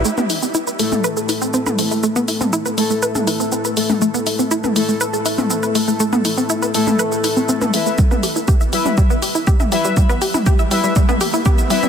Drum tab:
HH |--o---o---o---o-|--o---o---o---o-|--o---o---o---o-|--o---o---o---o-|
SH |xxxxxxxxxxxxxxxx|xxxxxxxxxxxxxxxx|xxxxxxxxxxxxxxxx|xxxxxxxxxxxxxxxx|
T2 |-o-----o-----o--|---o-----o-----o|-----o-----o----|-o-----o-----o--|
BD |----------------|----------------|----------------|----------------|

HH |--o---o---o---o-|--o---o---o---o-|
SH |xxxxxxxxxxxxxxxx|xxxxxxxxxxxxxxxx|
T2 |oo--o--oo---oo--|o--oo---oo--o--o|
BD |o---o---o---o---|o---o---o---o---|